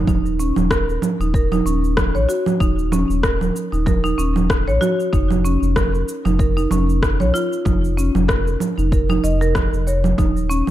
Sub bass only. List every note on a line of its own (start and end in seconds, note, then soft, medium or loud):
0.07 0.52 D#1 loud
0.57 0.98 D#1 medium
1.20 1.62 D#1 medium
1.65 2.16 D#1 loud
2.15 2.26 A#1 loud
2.60 3.05 D#1 loud
3.09 3.51 D#1 medium
3.73 4.14 D#1 medium
4.18 4.69 D#1 loud
4.67 4.79 A#1 medium
5.13 5.57 F1 loud
5.62 6.04 F1 medium
6.25 6.67 F1 medium
6.71 7.22 F1 loud
7.20 7.32 B1 medium
7.66 8.10 F1 loud
8.15 8.56 F1 medium
8.78 9.20 F1 medium
9.24 9.68 F1 loud
9.73 10.14 F1 medium
10.18 10.63 D#1 loud